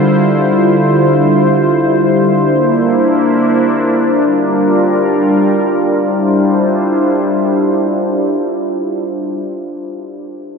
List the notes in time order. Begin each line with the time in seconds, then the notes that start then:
Already playing: D3 G3 E4 F4 C5
2.42 A#3 D4 E4
4.24 G3 F4 A#4
6.06 G3 D4 E4 F4 C5